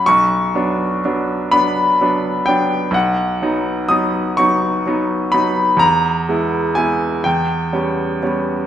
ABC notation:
X:1
M:6/8
L:1/8
Q:3/8=42
K:Bm
V:1 name="Grand piano"
c'3 b2 g | [K:B] f2 d' c'2 b | a2 g =g2 z |]
V:2 name="Grand piano"
B,,, [F,B,D] [F,B,D] [F,B,D] [F,B,D] [F,B,D] | [K:B] B,,, [F,B,D] [F,B,D] [F,B,D] [F,B,D] [F,B,D] | E,, [G,B,E] [G,B,E] E,, [=G,B,C] [G,B,C] |]